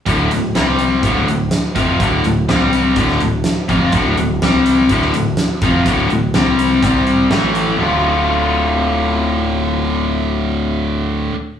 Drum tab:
HH |x-x-x-x-x-x-x-x-|x-x-x-x-x-x-x-x-|x-x-x-x-x-x-x-x-|x-x-x-x-x-x-x-x-|
SD |----o-------o---|----o----o--o---|----o----o--o---|----o-------o---|
BD |o-------o-----o-|o-------o-----o-|o-------o-----o-|o-------o-------|

HH |----------------|----------------|
SD |----------------|----------------|
BD |----------------|----------------|